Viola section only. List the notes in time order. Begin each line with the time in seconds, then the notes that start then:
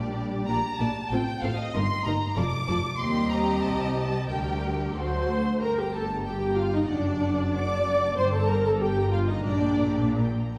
Already playing: G3 D4
0.49 A#3 D4
0.80 A#3 D4
1.12 C4 F4
1.43 C4 F4
1.74 A#3 D#4
2.05 A#3 D#4
2.37 F3 F4
2.69 F3 F4
3.00 G3 C4
4.30 G3 D4
4.96 F#3 C5
5.29 A3
5.62 A#4
5.79 G4
5.95 A4
6.26 G4
6.58 F4
6.74 D#4
6.90 D4
7.55 D5
8.18 C5
8.34 A4
8.49 A#4
8.66 A4
8.81 G4
9.12 F4
9.28 D#4
9.43 D4